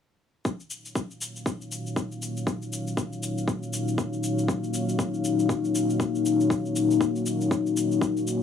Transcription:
0.45 analog synth pad A#3 D#4 F#4 C#5 F5, kick, cabasa
0.60 cabasa
0.70 cabasa
0.85 cabasa
0.95 kick, cabasa
1.11 cabasa
1.21 cabasa
1.36 cabasa
1.46 kick, cabasa
1.61 cabasa
1.72 cabasa
1.87 cabasa
1.96 kick, cabasa
2.12 cabasa
2.22 cabasa
2.37 cabasa
2.47 kick, cabasa
2.62 cabasa
2.73 cabasa
2.87 cabasa
2.97 kick, cabasa
3.13 cabasa
3.23 cabasa
3.38 cabasa
3.48 kick, cabasa
3.63 cabasa
3.73 cabasa
3.88 cabasa
3.98 kick, cabasa
4.13 cabasa
4.23 cabasa
4.38 cabasa
4.48 kick, cabasa
4.64 cabasa
4.74 cabasa
4.89 cabasa
4.99 kick, cabasa
5.14 cabasa
5.24 cabasa
5.39 cabasa
5.49 kick, cabasa
5.65 cabasa
5.75 cabasa
5.90 cabasa
6.00 kick, cabasa
6.15 cabasa
6.26 cabasa
6.40 cabasa
6.50 kick, cabasa
6.66 cabasa
6.76 cabasa
6.91 cabasa
7.01 kick, cabasa
7.16 cabasa
7.26 cabasa
7.41 cabasa
7.51 kick, cabasa
7.66 cabasa
7.77 cabasa
7.92 cabasa
8.01 kick, cabasa
8.17 cabasa
8.27 cabasa

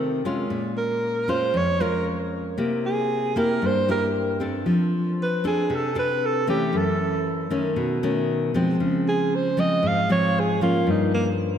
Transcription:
Already playing: nylon-string guitar C3 D#3 A3 C4
0.25 nylon-string guitar G#3 C#4 F4
0.50 nylon-string guitar A#2
0.77 alto saxophone A#4
1.28 nylon-string guitar G#3 C#4 F4, alto saxophone C5
1.54 nylon-string guitar F2, alto saxophone C#5
1.80 nylon-string guitar G#3 C#4 F4, alto saxophone A#4
2.58 nylon-string guitar C3 A#3 E4
2.86 alto saxophone G#4
3.36 nylon-string guitar A#3 E4 G4, alto saxophone A#4
3.62 nylon-string guitar G2
3.66 alto saxophone C5
3.89 nylon-string guitar A#3 E4 G4, alto saxophone A#4
4.40 nylon-string guitar C4 D4 A4
4.66 nylon-string guitar F3
5.23 alto saxophone B4
5.44 nylon-string guitar C4 D4 A4, alto saxophone G#4
5.70 nylon-string guitar C3
5.75 alto saxophone A4
5.95 nylon-string guitar C4 D4 A4, alto saxophone B4
6.26 alto saxophone A4
6.47 nylon-string guitar E3 A3 C#4, alto saxophone G4
6.73 nylon-string guitar F#2
6.77 alto saxophone A4
7.50 nylon-string guitar D#3 A3 C#4
7.76 nylon-string guitar B2
8.03 nylon-string guitar D#3 A3 C#4
8.54 nylon-string guitar F3 G#3 C4
8.80 nylon-string guitar C#3
9.08 alto saxophone G#4
9.35 alto saxophone C5
9.57 nylon-string guitar F3 G#3 C4, alto saxophone D#5
9.83 nylon-string guitar G#2
9.87 alto saxophone F5
10.09 nylon-string guitar F3 G#3 C4, alto saxophone C#5
10.40 alto saxophone G#4
10.61 nylon-string guitar F3 A#3 C#4, alto saxophone F4
10.87 nylon-string guitar G2, alto saxophone D#4
11.14 alto saxophone A#3

